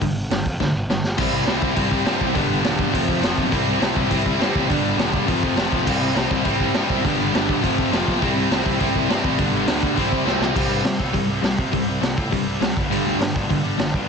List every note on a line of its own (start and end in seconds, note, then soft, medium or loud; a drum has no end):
0.01 0.11 G1 loud
0.01 0.14 G2 medium
0.01 0.15 D3 medium
0.01 kick medium
0.01 open hi-hat medium
0.15 0.25 G1 medium
0.31 0.41 G1 medium
0.31 0.44 G2 medium
0.31 0.44 D3 medium
0.31 snare loud
0.31 open hi-hat medium
0.46 0.56 F2 medium
0.46 kick medium
0.60 0.70 D2 medium
0.60 0.73 G2 medium
0.60 0.73 D3 medium
0.60 kick loud
0.60 snare medium
0.74 0.85 G1 medium
0.89 0.99 G1 medium
0.89 1.03 G2 medium
0.89 1.03 D3 medium
0.89 snare medium
1.04 1.14 G1 medium
1.04 snare medium
1.17 1.28 C2 loud
1.17 1.48 C3 medium
1.17 1.47 G3 loud
1.17 1.47 C4 medium
1.17 1.46 E4 loud
1.17 kick loud
1.17 crash loud
1.32 1.42 C2 loud
1.47 1.57 C2 medium
1.47 1.75 C3 medium
1.47 1.75 G3 medium
1.47 1.76 C4 medium
1.47 1.76 E4 loud
1.47 snare loud
1.47 open hi-hat medium
1.62 1.71 C2 medium
1.62 kick loud
1.76 1.86 C2 medium
1.76 2.05 C3 loud
1.76 2.05 G3 loud
1.76 2.04 C4 loud
1.76 2.03 E4 loud
1.76 kick loud
1.76 open hi-hat medium
1.91 2.01 C2 medium
1.91 kick medium
2.05 2.16 G2 medium
2.05 2.33 C3 medium
2.05 2.33 G3 medium
2.05 2.34 C4 medium
2.05 2.34 E4 medium
2.05 snare loud
2.05 open hi-hat medium
2.21 2.30 C2 loud
2.21 kick medium
2.33 2.45 G1 loud
2.33 2.63 G2 medium
2.33 2.63 D3 loud
2.33 2.62 G3 loud
2.33 2.62 B3 loud
2.33 2.62 D4 loud
2.33 kick loud
2.33 open hi-hat medium
2.50 2.59 G1 loud
2.63 2.83 E1 medium
2.63 2.91 G2 medium
2.63 2.92 D3 medium
2.63 2.92 G3 medium
2.63 2.92 B3 medium
2.63 2.92 D4 medium
2.63 snare loud
2.63 open hi-hat medium
2.79 kick loud
2.91 3.03 F1 medium
2.91 3.21 F2 loud
2.91 3.20 C3 medium
2.91 3.19 F3 loud
2.91 3.19 A3 loud
2.91 3.18 C4 loud
2.91 kick loud
2.91 open hi-hat medium
3.08 3.18 F2 medium
3.08 kick medium
3.20 3.32 F1 medium
3.20 3.51 F2 medium
3.20 3.48 C3 medium
3.20 3.50 F3 medium
3.20 3.50 A3 medium
3.20 3.50 C4 medium
3.20 snare loud
3.20 open hi-hat medium
3.38 3.47 B1 loud
3.38 kick medium
3.50 3.62 C2 loud
3.50 3.79 C3 medium
3.50 3.78 G3 medium
3.50 3.78 C4 loud
3.50 3.78 E4 loud
3.50 kick loud
3.50 open hi-hat medium
3.66 3.76 C2 loud
3.79 3.90 C2 medium
3.79 4.08 C3 medium
3.79 4.08 G3 medium
3.79 4.09 C4 medium
3.79 4.10 E4 loud
3.79 snare loud
3.79 open hi-hat medium
3.96 4.06 C2 loud
3.96 kick loud
4.09 4.20 C2 medium
4.09 4.39 C3 loud
4.09 4.39 G3 loud
4.09 4.38 C4 loud
4.09 4.38 E4 loud
4.09 kick loud
4.09 open hi-hat medium
4.26 4.35 C2 medium
4.26 kick medium
4.39 4.49 G2 medium
4.39 4.68 C3 medium
4.39 4.67 G3 medium
4.39 4.68 C4 medium
4.39 4.68 E4 medium
4.39 snare loud
4.39 open hi-hat medium
4.55 4.64 A1 loud
4.55 kick medium
4.67 4.79 G1 loud
4.67 4.98 G2 medium
4.67 4.97 D3 loud
4.67 4.97 G3 loud
4.67 4.96 B3 loud
4.67 4.96 D4 loud
4.67 kick loud
4.67 open hi-hat medium
4.83 4.93 G1 medium
4.97 5.17 E1 loud
4.97 5.25 G2 medium
4.97 5.25 D3 medium
4.97 5.26 G3 loud
4.97 5.26 B3 medium
4.97 5.27 D4 medium
4.97 snare loud
4.97 open hi-hat medium
5.14 kick loud
5.25 5.37 F1 medium
5.25 5.57 F2 loud
5.25 5.57 C3 loud
5.25 5.57 F3 medium
5.25 5.55 A3 loud
5.25 5.55 C4 loud
5.25 5.55 F4 loud
5.25 kick loud
5.25 open hi-hat medium
5.43 5.52 F2 medium
5.43 kick medium
5.56 5.66 F1 medium
5.56 5.86 F2 medium
5.56 5.85 C3 medium
5.56 5.86 F3 medium
5.56 5.85 A3 medium
5.56 5.85 C4 medium
5.56 5.85 F4 medium
5.56 snare loud
5.56 open hi-hat medium
5.72 5.82 F1 loud
5.72 kick medium
5.86 5.96 C2 loud
5.86 6.16 C3 medium
5.86 6.16 G3 medium
5.86 6.15 C4 loud
5.86 6.14 E4 loud
5.86 6.15 G4 medium
5.86 kick medium
5.86 crash loud
6.01 6.10 C2 loud
6.16 6.25 C2 medium
6.16 6.44 C3 medium
6.16 6.44 G3 medium
6.16 6.45 C4 medium
6.16 6.45 E4 medium
6.16 6.46 G4 medium
6.16 snare loud
6.16 open hi-hat medium
6.31 6.40 C2 medium
6.31 kick loud
6.45 6.55 C2 medium
6.45 6.76 C3 loud
6.45 6.75 G3 loud
6.45 6.75 C4 loud
6.45 6.74 E4 loud
6.45 6.74 G4 loud
6.45 kick loud
6.45 open hi-hat medium
6.60 6.69 C2 medium
6.60 kick medium
6.74 6.84 G2 medium
6.74 7.04 C3 medium
6.74 7.03 G3 medium
6.74 7.04 C4 medium
6.74 7.04 E4 loud
6.74 7.03 G4 medium
6.74 snare loud
6.74 open hi-hat medium
6.90 6.99 C2 medium
6.90 kick medium
7.03 7.14 G1 loud
7.03 7.35 G2 loud
7.03 7.35 D3 medium
7.03 7.34 G3 medium
7.03 7.34 B3 loud
7.03 7.33 D4 medium
7.03 7.33 G4 loud
7.03 kick loud
7.03 open hi-hat medium
7.19 7.28 G1 loud
7.33 7.52 G1 medium
7.33 7.63 G2 medium
7.33 7.63 D3 medium
7.33 7.63 G3 medium
7.33 7.63 B3 loud
7.33 7.63 D4 medium
7.33 7.62 G4 medium
7.33 snare loud
7.33 open hi-hat medium
7.49 kick loud
7.63 7.73 F1 loud
7.63 7.92 F2 loud
7.63 7.92 C3 loud
7.63 7.91 F3 loud
7.63 7.91 A3 loud
7.63 7.90 C4 loud
7.63 7.90 F4 loud
7.63 kick loud
7.63 open hi-hat medium
7.78 7.87 F2 medium
7.78 kick medium
7.92 8.02 F1 medium
7.92 8.21 F2 medium
7.92 8.20 C3 medium
7.92 8.21 F3 medium
7.92 8.21 A3 medium
7.92 8.20 C4 medium
7.92 8.20 F4 loud
7.92 snare loud
7.92 open hi-hat medium
8.08 8.17 B1 loud
8.08 kick medium
8.21 8.31 C2 loud
8.21 8.52 C3 loud
8.21 8.52 G3 loud
8.21 8.50 C4 loud
8.21 8.50 E4 loud
8.21 kick loud
8.21 open hi-hat medium
8.36 8.46 C2 loud
8.51 8.60 C2 medium
8.51 8.78 C3 medium
8.51 8.79 G3 medium
8.51 8.79 C4 medium
8.51 8.79 E4 medium
8.51 snare loud
8.51 open hi-hat medium
8.66 8.75 C2 medium
8.66 kick loud
8.79 8.90 C2 medium
8.79 9.09 C3 loud
8.79 9.10 G3 loud
8.79 9.09 C4 loud
8.79 9.08 E4 loud
8.79 kick loud
8.79 open hi-hat medium
8.95 9.05 C2 medium
8.95 kick medium
9.08 9.18 G2 medium
9.08 9.38 C3 medium
9.08 9.39 G3 medium
9.08 9.38 C4 medium
9.08 9.38 E4 medium
9.08 snare loud
9.08 open hi-hat medium
9.24 9.34 A1 medium
9.24 kick medium
9.38 9.48 G1 loud
9.38 9.68 G2 medium
9.38 9.68 D3 loud
9.38 9.67 G3 loud
9.38 9.67 B3 loud
9.38 9.66 D4 loud
9.38 kick loud
9.38 open hi-hat medium
9.53 9.63 G1 loud
9.67 9.86 D2 medium
9.67 9.97 G2 medium
9.67 9.95 D3 medium
9.67 9.94 G3 medium
9.67 9.96 B3 medium
9.67 9.96 D4 medium
9.67 snare loud
9.67 open hi-hat medium
9.83 kick loud
9.95 10.07 C2 medium
9.95 10.25 C3 loud
9.95 10.25 G3 loud
9.95 10.24 C4 loud
9.95 10.23 E4 loud
9.95 kick loud
9.95 open hi-hat medium
10.12 10.21 C3 medium
10.12 kick medium
10.25 10.35 C2 medium
10.25 10.53 C3 medium
10.25 10.54 G3 medium
10.25 10.54 C4 medium
10.25 10.54 E4 medium
10.25 snare medium
10.41 10.50 C2 loud
10.41 snare medium
10.54 10.66 C2 medium
10.54 10.83 C3 medium
10.54 10.83 G3 medium
10.54 10.84 C4 loud
10.54 kick loud
10.54 crash loud
10.70 10.80 G2 loud
10.84 10.95 C3 medium
10.84 10.98 C3 medium
10.84 10.98 G3 medium
10.84 snare loud
10.84 open hi-hat medium
10.98 11.10 C2 medium
10.98 11.42 C3 medium
10.98 11.44 G3 medium
10.98 11.42 C4 medium
10.98 kick medium
11.13 11.24 C2 medium
11.13 11.27 C3 medium
11.13 11.27 G3 medium
11.13 kick loud
11.13 open hi-hat medium
11.28 11.39 C2 medium
11.41 11.53 C2 medium
11.41 11.56 C3 medium
11.41 11.56 G3 medium
11.41 snare loud
11.41 open hi-hat medium
11.46 11.74 C4 medium
11.58 11.69 C3 medium
11.58 kick medium
11.72 11.83 C2 medium
11.72 11.86 C3 medium
11.72 11.86 G3 medium
11.72 12.15 C4 loud
11.72 kick medium
11.72 open hi-hat medium
11.87 11.97 C2 loud
12.01 12.13 C2 medium
12.01 12.15 C3 medium
12.01 12.15 G3 medium
12.01 snare loud
12.01 open hi-hat medium
12.17 12.28 A2 medium
12.17 12.59 C3 medium
12.17 12.62 G3 medium
12.17 12.60 C4 medium
12.17 kick loud
12.31 12.42 G2 medium
12.31 12.45 C3 medium
12.31 12.45 G3 medium
12.31 kick medium
12.31 open hi-hat medium
12.46 12.56 C2 medium
12.60 12.71 C2 medium
12.60 12.74 C3 medium
12.60 12.75 G3 medium
12.60 12.77 C4 medium
12.60 snare loud
12.60 open hi-hat medium
12.74 12.87 G1 medium
12.74 13.19 G2 medium
12.74 13.20 D3 loud
12.74 13.23 G3 loud
12.74 kick medium
12.90 13.01 G1 medium
12.90 13.19 G2 medium
12.90 13.19 D3 medium
12.90 13.20 G3 medium
12.90 open hi-hat medium
13.05 13.16 D2 medium
13.20 13.30 G2 medium
13.20 13.34 G2 medium
13.20 13.34 D3 medium
13.20 13.63 G3 medium
13.20 snare loud
13.20 open hi-hat medium
13.36 13.46 G1 medium
13.36 kick medium
13.49 13.60 G1 medium
13.49 13.63 G2 medium
13.49 13.63 D3 medium
13.49 kick loud
13.49 open hi-hat medium
13.63 13.74 G1 medium
13.63 13.91 G2 medium
13.63 13.93 D3 medium
13.63 13.95 G3 loud
13.78 13.89 G1 medium
13.78 13.92 G2 medium
13.78 13.92 D3 medium
13.78 snare loud
13.78 open hi-hat soft
13.92 14.09 G2 medium
13.92 14.04 G2 loud
13.92 14.09 D3 medium
13.92 14.09 G3 loud
13.92 kick medium